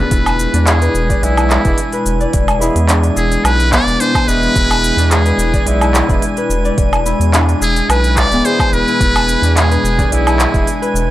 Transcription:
Already playing: B3 D4 E4 G#4 B4 E5
0.00 B4
0.11 E1 B2 G#3 E4 G#5, kick, open hi-hat, shaker
0.26 open hi-hat, low woodblock, shaker
0.39 shaker
0.54 E2 D4, open hi-hat, shaker
0.67 G#4, clap, open hi-hat, shaker
0.82 B4, open hi-hat, shaker
0.94 E1, shaker
1.10 D5, kick, open hi-hat, shaker
1.22 B1 E3 G#3 B3 E4 G#4, open hi-hat, shaker
1.37 E4, open hi-hat, low woodblock, shaker
1.50 clap, shaker
1.64 E1 E3 G#3 B3 D4 E4 G#4, kick, open hi-hat, shaker
1.78 open hi-hat, shaker
1.92 B4, open hi-hat, shaker
2.06 E1, shaker
2.20 D5, shaker
2.33 E1, kick, open hi-hat, shaker
2.48 open hi-hat, low woodblock, shaker
2.59 E3 G#3 B3 E4 G#4, shaker
2.76 E2, open hi-hat, shaker
2.89 D4, clap, open hi-hat, shaker
3.03 open hi-hat, shaker
3.16 E1 G#4 E5, shaker
3.31 open hi-hat, shaker
3.44 B1 B4, open hi-hat, low woodblock, shaker
3.60 open hi-hat, shaker
3.72 B3 D5, kick, clap, shaker
3.87 E1, open hi-hat, shaker
4.00 D4 C5, open hi-hat, shaker
4.15 kick, open hi-hat, low woodblock, shaker
4.26 E1 E3 G#3 B3 E4 G#4 B4, shaker
4.43 shaker
4.56 E1 E4, kick, open hi-hat, shaker
4.71 open hi-hat, low woodblock, shaker
4.84 shaker
4.97 E2 D4, open hi-hat, shaker
5.11 G#4, clap, open hi-hat, shaker
5.26 B4, open hi-hat, shaker
5.38 E1, shaker
5.54 D5, kick, open hi-hat, shaker
5.66 B1 E3 G#3 B3 E4 G#4, open hi-hat, shaker
5.81 E4, open hi-hat, low woodblock, shaker
5.94 clap, shaker
6.08 E1 E3 G#3 B3 D4 E4 G#4, kick, open hi-hat, shaker
6.22 open hi-hat, shaker
6.37 B4, open hi-hat, shaker
6.50 E1, shaker
6.65 D5, shaker
6.78 E1, kick, open hi-hat, shaker
6.93 open hi-hat, low woodblock, shaker
7.06 E4, shaker
7.20 E2, open hi-hat, shaker
7.33 D4, clap, open hi-hat, shaker
7.49 open hi-hat, shaker
7.61 E1 G#4 E5, shaker
7.76 open hi-hat, shaker
7.89 B1 B4, open hi-hat, low woodblock, shaker
8.04 open hi-hat, shaker
8.17 D5, kick, clap, shaker
8.30 D1 E3 G#3 B3 E4, open hi-hat, shaker
8.34 G#4
8.45 G#4 C5, open hi-hat, shaker
8.59 kick, open hi-hat, low woodblock, shaker
8.72 E1 E4 B4, shaker
8.88 E4, shaker
9.00 E1 D4 E4, kick, open hi-hat, shaker
9.16 open hi-hat, low woodblock, shaker
9.29 shaker
9.42 E2 D4, open hi-hat, shaker
9.57 G#4, clap, open hi-hat, shaker
9.71 B4, open hi-hat, shaker
9.84 E1, shaker
9.99 D5, kick, open hi-hat, frame drum, shaker
10.11 B1 E3 G#3 B3 E4 G#4, open hi-hat, shaker
10.26 E4, open hi-hat, low woodblock, shaker
10.39 clap, shaker
10.53 E1 E3 G#3 B3 D4 E4 G#4, kick, open hi-hat, shaker
10.67 open hi-hat, shaker
10.82 B4, open hi-hat, shaker
10.94 E1, shaker

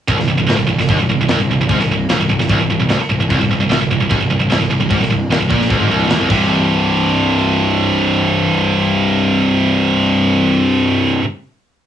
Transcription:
0.08 C1 C2, kick, crash
0.18 C1 C2, snare
0.27 C1 C2
0.38 C1 C2
0.49 D1 D2, snare, crash
0.58 C1 C2
0.67 C1 C2
0.77 C1 C2, snare
0.88 D#1 D#2, kick, crash
0.97 C1 C2
1.08 C1 C2
1.18 C1 C2
1.28 C1 C2, snare, crash
1.39 C1 C2
1.48 C1 C2
1.57 C1 C2
1.68 G#1 G#2, kick, crash
1.79 C1 C2, snare
1.88 C1 C2
2.08 D#1 D#2, snare, crash
2.19 C1 C2
2.29 C1 C2
2.40 C1 C2, snare
2.49 C1 C2, kick, crash
2.59 C1 C2
2.69 C1 C2
2.79 C1 C2
2.88 D1 D2, snare, crash
2.98 muted picked electric bass stroke, muted distorted electric guitar stroke
3.09 C1 C2
3.17 C1 C2
3.29 C1 C2, kick, crash
3.37 C1 C2
3.48 C1 C2
3.58 C1 C2
3.68 D1 D2, snare, crash
3.78 C1 C2
3.88 C1 C2
4.00 C1 C2
4.09 D#1 D#2, kick, crash
4.20 C1 C2
4.30 C1 C2
4.41 C1 C2
4.49 C1 C2, snare, crash
4.59 C1 C2
4.69 C1 C2
4.79 C1 C2
4.89 G#1 G#2, kick, crash
5.00 C1 C2, snare
5.10 C1 C2
5.30 D#1 D#2, snare, crash
5.39 C1 C2
5.49 A#1 A#2, kick
5.61 snare
5.69 D1 D2, kick, crash
5.79 G#1 G#2
5.89 C1 C2
6.07 D#1 D#2, snare, crash
6.19 C1 C2
6.28 C1 C2 G2 C3, kick, crash

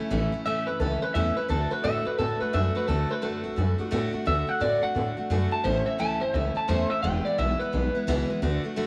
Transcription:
Already playing: E4
0.10 A1 A2 E3 A3 C#4 E4
0.32 C#4 E4, muted upright bass stroke
0.45 C#2 A2 E3 A3 C#4 E4 E5
0.67 G1 A3 C#4 E4 B4
0.80 C#2 E3 A3 C#4 E4 A4
1.02 A3 C#4 E4 B4, muted upright bass stroke
1.14 E2 A2 E3 A3 C#4 E4 E5
1.36 A3 C#4 E4 B4
1.48 D2 D3 A3 D4 F#4 A4
1.70 A3 D4 F#4 B4
1.84 A2 D3 A3 D4 F#4 E5
2.05 A3 D4 F#4 B4, muted upright bass stroke
2.18 A2 D3 A3 D4 F#4 A4
2.40 A3 D4 F#4 B4, muted upright bass stroke
2.53 F#2 D3 A3 D4 F#4 E5
2.75 A3 D4 F#4 B4
2.87 D2 D3 A3 D4 F#4 A4
3.09 A3 D4 F#4 B4, muted upright bass stroke
3.22 F#2 D3 A3 D4 F#4 A4
3.44 B1 A3 D4 F#4
3.56 F#2 D3 A3 D4 F#4
3.78 A3 D4 F#4, muted upright bass stroke
3.91 A2 D3 A3 D4 F#4
4.13 A3 D4 F#4, muted upright bass stroke
4.26 D2 D3 A3 D4 F#4 E5
4.47 A3 D4 F#4 F#5
4.61 A2 D3 A3 D4 F#4 D5
4.82 A3 D4 F#4 F#5, muted upright bass stroke
4.95 A2 D3 A3 D4 F#4
5.17 A3 D4 F#4, muted upright bass stroke
5.30 F#2 D3 A3 D4 F#4
5.51 A3 D4 F#4 A5
5.64 A1 A2 E3 A3 C#4 E4 C5
5.86 A3 C#4 E4 E5, muted upright bass stroke
5.98 C#2 A2 E3 A3 C#4 E4 A5
6.20 G1 A3 C#4 E4 C5
6.34 C#2 E3 A3 C#4 E4 E5
6.55 A3 C#4 E4 A5, muted upright bass stroke
6.68 E2 A2 E3 A3 C#4 E4 C5
6.90 A3 C#4 E4 E5, muted upright bass stroke
7.03 E1 E2 B2 E3 G#3 B3 E4 G5
7.25 E3 G#3 B3 E4 D5, muted upright bass stroke
7.38 B1 E2 B2 E3 G#3 B3 E4 E5
7.59 E3 G#3 B3 E4 B4, muted upright bass stroke
7.72 B1 E3 G#3 B3 E4
7.95 E3 G#3 B3 E4, muted upright bass stroke
8.07 C#2 E2 B2 E3 G#3 B3 E4
8.29 E3 G#3 B3 E4, muted upright bass stroke
8.42 D2 D3 A3 D4 F#4
8.63 A3 D4 F#4
8.76 F#2 D3 A3 D4 F#4

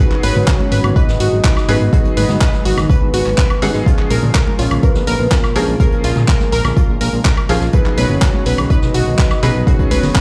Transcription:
Already playing: D#3 F#3 G#3 B3 F#4
0.00 F#3 B3 D#4 G#4 B4
0.12 clap
0.23 G#1 B4 C#5, closed hi-hat, open hi-hat, high conga
0.36 G#2, low conga
0.48 F#4, kick, snare, clap, closed hi-hat
0.60 high conga
0.72 G#1 B4, closed hi-hat, open hi-hat
0.83 G#1, closed hi-hat, low conga, high woodblock
0.96 B4 D#5, kick, closed hi-hat
1.08 G#1, snare
1.20 G#1 F#4, closed hi-hat, open hi-hat
1.32 G#1
1.44 B4, kick, snare, clap, closed hi-hat
1.57 snare, high woodblock
1.68 G#1 F#3 B3 D#4 G#4 B4, closed hi-hat, open hi-hat
1.81 G#1
1.93 F#3 B3 D#4 F#4 G#4 D#5, kick, closed hi-hat
2.05 closed hi-hat
2.17 G#1 B4, closed hi-hat, open hi-hat, high conga
2.29 G#2, snare, low conga
2.41 B4, kick, snare, clap, closed hi-hat
2.53 snare, high conga
2.65 G#1 F#4, closed hi-hat, open hi-hat
2.77 G#1, snare, low conga, high woodblock
2.90 B4, kick, closed hi-hat
3.02 G#1
3.13 G#1 F#4, closed hi-hat, open hi-hat
3.26 G#1, clap, closed hi-hat
3.37 B4, kick, snare, clap, closed hi-hat
3.50 closed hi-hat, high woodblock
3.62 G#1 F#3 B3 D#4 G#4 F#5, closed hi-hat, open hi-hat
3.74 G#2, snare
3.86 A#2 C#3 F3 G#3 C#4 F4 G#4, kick, closed hi-hat
3.99 clap
4.11 A#1 A#4, closed hi-hat, open hi-hat, high conga
4.23 A#2, low conga
4.34 A#4, kick, snare, clap, closed hi-hat
4.47 high conga
4.59 A#1 F4 C#5, closed hi-hat, open hi-hat
4.71 A#1, closed hi-hat, low conga, high woodblock
4.83 A#4 B4, kick, closed hi-hat
4.95 A#1, snare
5.07 A#1 A#4, closed hi-hat, open hi-hat
5.20 A#1
5.31 F4 A#4, kick, snare, clap, closed hi-hat
5.44 snare, high woodblock
5.56 A#1 F3 A#3 C#4 G#4 A#4, closed hi-hat, open hi-hat
5.68 A#1
5.80 F3 A#3 C#4 G#4 A#4, kick, closed hi-hat
5.92 closed hi-hat
6.03 A#1 F4, closed hi-hat, open hi-hat, high conga
6.16 A#2, snare, low conga
6.28 A#4, kick, snare, clap, closed hi-hat
6.40 snare, high conga
6.52 A#1 A#4, closed hi-hat, open hi-hat
6.64 A#1, snare, low conga, high woodblock
6.77 F4, kick, closed hi-hat
6.89 A#1
7.01 A#1 A#4, closed hi-hat, open hi-hat
7.13 A#1, closed hi-hat
7.25 A#4, kick, snare, clap, closed hi-hat
7.37 closed hi-hat, high woodblock
7.49 A#1 F3 A#3 C#4 F4 G#4, closed hi-hat, open hi-hat
7.61 A#1, snare
7.73 D#3 F#3 G#3 B3 D#4 F#4 G#4 B4, kick, closed hi-hat
7.86 clap
7.98 B1 B4 C#5, closed hi-hat, open hi-hat, high conga
8.10 F#1, low conga
8.21 F#4, kick, snare, clap, closed hi-hat
8.34 high conga
8.46 B1 B4, closed hi-hat, open hi-hat
8.58 B1, closed hi-hat, low conga, high woodblock
8.70 B4 D#5, kick, closed hi-hat
8.82 B1, snare
8.94 B1 F#4, closed hi-hat, open hi-hat
9.07 B1
9.19 B4, kick, snare, clap, closed hi-hat
9.30 snare, high woodblock
9.43 B1 F#3 B3 D#4 G#4 B4, closed hi-hat, open hi-hat
9.55 B1
9.67 F#3 B3 D#4 F#4 G#4 C#5, kick, closed hi-hat
9.79 kick, closed hi-hat
9.91 B1 B4, closed hi-hat, open hi-hat, high conga
10.03 F#1, snare, open hi-hat, low conga
10.15 B4, kick, snare, clap, closed hi-hat

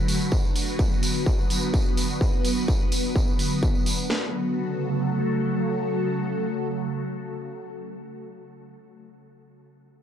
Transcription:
Already playing: D3 F#3 A3 F#4 B4
0.09 open hi-hat, tambourine
0.21 tambourine
0.32 B3 B4, kick, tambourine
0.45 tambourine
0.56 open hi-hat, tambourine
0.67 tambourine
0.79 kick, tambourine
0.92 tambourine
1.03 open hi-hat, tambourine
1.16 tambourine
1.26 kick, tambourine
1.38 tambourine
1.50 open hi-hat, tambourine
1.63 tambourine
1.74 kick, tambourine
1.86 tambourine
1.97 open hi-hat, tambourine
2.09 tambourine
2.21 kick, tambourine
2.33 tambourine
2.45 open hi-hat, tambourine
2.57 tambourine
2.68 kick, tambourine
2.80 tambourine
2.92 open hi-hat, tambourine
3.04 tambourine
3.15 kick, tambourine
3.27 tambourine
3.39 open hi-hat, tambourine
3.51 tambourine
3.63 kick, tambourine
3.75 tambourine
3.86 open hi-hat, tambourine
3.99 tambourine
4.10 C#3 F#3 A3 F#4 A4, snare

